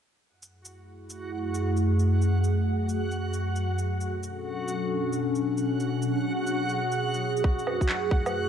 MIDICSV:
0, 0, Header, 1, 4, 480
1, 0, Start_track
1, 0, Key_signature, 3, "minor"
1, 0, Tempo, 447761
1, 301, Time_signature, 4, 2, 24, 8
1, 9099, End_track
2, 0, Start_track
2, 0, Title_t, "Synth texture"
2, 0, Program_c, 0, 99
2, 303, Note_on_c, 0, 78, 71
2, 306, Note_on_c, 0, 66, 70
2, 9099, Note_off_c, 0, 66, 0
2, 9099, Note_off_c, 0, 78, 0
2, 9099, End_track
3, 0, Start_track
3, 0, Title_t, "Ambient pad"
3, 0, Program_c, 1, 92
3, 303, Note_on_c, 1, 57, 75
3, 303, Note_on_c, 1, 64, 74
3, 303, Note_on_c, 1, 68, 91
3, 306, Note_on_c, 1, 42, 79
3, 306, Note_on_c, 1, 54, 70
3, 2203, Note_off_c, 1, 64, 0
3, 2220, Note_on_c, 1, 66, 70
3, 4104, Note_off_c, 1, 57, 0
3, 4104, Note_off_c, 1, 68, 0
3, 4105, Note_off_c, 1, 42, 0
3, 4121, Note_off_c, 1, 66, 0
3, 4135, Note_on_c, 1, 47, 84
3, 4135, Note_on_c, 1, 62, 77
3, 4135, Note_on_c, 1, 69, 90
3, 4137, Note_on_c, 1, 61, 74
3, 6039, Note_off_c, 1, 69, 0
3, 6059, Note_on_c, 1, 68, 90
3, 7940, Note_off_c, 1, 47, 0
3, 7940, Note_off_c, 1, 62, 0
3, 7941, Note_off_c, 1, 61, 0
3, 7973, Note_on_c, 1, 57, 78
3, 7973, Note_on_c, 1, 64, 71
3, 7975, Note_on_c, 1, 42, 82
3, 9099, Note_off_c, 1, 42, 0
3, 9099, Note_off_c, 1, 54, 0
3, 9099, Note_off_c, 1, 57, 0
3, 9099, Note_off_c, 1, 64, 0
3, 9099, Note_off_c, 1, 68, 0
3, 9099, End_track
4, 0, Start_track
4, 0, Title_t, "Drums"
4, 456, Note_on_c, 9, 82, 44
4, 563, Note_off_c, 9, 82, 0
4, 698, Note_on_c, 9, 82, 51
4, 805, Note_off_c, 9, 82, 0
4, 1177, Note_on_c, 9, 82, 50
4, 1284, Note_off_c, 9, 82, 0
4, 1657, Note_on_c, 9, 82, 55
4, 1764, Note_off_c, 9, 82, 0
4, 1895, Note_on_c, 9, 82, 37
4, 2002, Note_off_c, 9, 82, 0
4, 2137, Note_on_c, 9, 82, 50
4, 2244, Note_off_c, 9, 82, 0
4, 2376, Note_on_c, 9, 82, 43
4, 2484, Note_off_c, 9, 82, 0
4, 2615, Note_on_c, 9, 82, 51
4, 2722, Note_off_c, 9, 82, 0
4, 3096, Note_on_c, 9, 82, 50
4, 3204, Note_off_c, 9, 82, 0
4, 3337, Note_on_c, 9, 82, 30
4, 3444, Note_off_c, 9, 82, 0
4, 3575, Note_on_c, 9, 82, 54
4, 3682, Note_off_c, 9, 82, 0
4, 3814, Note_on_c, 9, 82, 41
4, 3922, Note_off_c, 9, 82, 0
4, 4057, Note_on_c, 9, 82, 51
4, 4164, Note_off_c, 9, 82, 0
4, 4295, Note_on_c, 9, 82, 43
4, 4402, Note_off_c, 9, 82, 0
4, 4536, Note_on_c, 9, 82, 52
4, 4643, Note_off_c, 9, 82, 0
4, 5018, Note_on_c, 9, 82, 52
4, 5125, Note_off_c, 9, 82, 0
4, 5497, Note_on_c, 9, 82, 53
4, 5604, Note_off_c, 9, 82, 0
4, 5737, Note_on_c, 9, 82, 38
4, 5844, Note_off_c, 9, 82, 0
4, 5977, Note_on_c, 9, 82, 50
4, 6084, Note_off_c, 9, 82, 0
4, 6217, Note_on_c, 9, 82, 42
4, 6324, Note_off_c, 9, 82, 0
4, 6455, Note_on_c, 9, 82, 51
4, 6562, Note_off_c, 9, 82, 0
4, 6933, Note_on_c, 9, 82, 47
4, 7041, Note_off_c, 9, 82, 0
4, 7176, Note_on_c, 9, 82, 26
4, 7283, Note_off_c, 9, 82, 0
4, 7416, Note_on_c, 9, 82, 52
4, 7523, Note_off_c, 9, 82, 0
4, 7656, Note_on_c, 9, 82, 37
4, 7764, Note_off_c, 9, 82, 0
4, 7898, Note_on_c, 9, 82, 48
4, 7977, Note_on_c, 9, 36, 105
4, 8005, Note_off_c, 9, 82, 0
4, 8084, Note_off_c, 9, 36, 0
4, 8136, Note_on_c, 9, 82, 40
4, 8222, Note_on_c, 9, 77, 47
4, 8243, Note_off_c, 9, 82, 0
4, 8329, Note_off_c, 9, 77, 0
4, 8373, Note_on_c, 9, 36, 55
4, 8378, Note_on_c, 9, 82, 48
4, 8459, Note_on_c, 9, 39, 97
4, 8480, Note_off_c, 9, 36, 0
4, 8485, Note_off_c, 9, 82, 0
4, 8566, Note_off_c, 9, 39, 0
4, 8697, Note_on_c, 9, 36, 95
4, 8804, Note_off_c, 9, 36, 0
4, 8857, Note_on_c, 9, 77, 58
4, 8857, Note_on_c, 9, 82, 50
4, 8965, Note_off_c, 9, 77, 0
4, 8965, Note_off_c, 9, 82, 0
4, 9099, End_track
0, 0, End_of_file